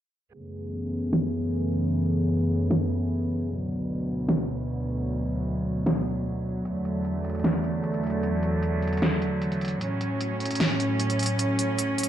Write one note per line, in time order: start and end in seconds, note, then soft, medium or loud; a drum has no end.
0.34 3.46 F#2 medium
0.34 3.46 C#3 medium
0.34 3.46 E3 medium
0.34 3.46 A3 medium
0.34 3.46 B3 medium
0.34 3.46 G#4 medium
1.13 snare loud
2.71 snare loud
3.50 6.62 D2 medium
3.50 6.62 B2 medium
3.50 12.09 F#3 medium
4.29 snare loud
5.86 snare loud
6.65 9.78 E2 medium
6.65 9.78 D3 medium
6.65 9.78 A3 medium
6.65 closed hi-hat medium
6.85 closed hi-hat medium
7.05 closed hi-hat medium
7.25 closed hi-hat soft
7.30 closed hi-hat medium
7.35 closed hi-hat soft
7.40 closed hi-hat medium
7.44 snare loud
7.44 closed hi-hat medium
7.64 closed hi-hat medium
7.84 closed hi-hat medium
7.94 closed hi-hat medium
8.04 closed hi-hat soft
8.07 closed hi-hat medium
8.10 closed hi-hat medium
8.23 closed hi-hat medium
8.43 closed hi-hat medium
8.63 closed hi-hat medium
8.82 closed hi-hat soft
8.88 closed hi-hat medium
8.93 closed hi-hat soft
8.97 closed hi-hat medium
9.02 snare loud
9.02 closed hi-hat medium
9.22 closed hi-hat medium
9.42 closed hi-hat medium
9.52 closed hi-hat medium
9.61 closed hi-hat soft
9.65 closed hi-hat medium
9.68 closed hi-hat medium
9.81 12.09 A2 medium
9.81 12.09 C#4 medium
9.81 closed hi-hat medium
10.01 closed hi-hat medium
10.21 closed hi-hat medium
10.40 closed hi-hat soft
10.46 closed hi-hat medium
10.51 closed hi-hat soft
10.55 closed hi-hat medium
10.60 snare loud
10.60 closed hi-hat medium
10.80 closed hi-hat medium
11.00 closed hi-hat medium
11.10 closed hi-hat medium
11.19 closed hi-hat soft
11.23 closed hi-hat medium
11.26 closed hi-hat medium
11.39 closed hi-hat medium
11.59 closed hi-hat medium
11.79 closed hi-hat medium
11.98 closed hi-hat soft
12.03 closed hi-hat medium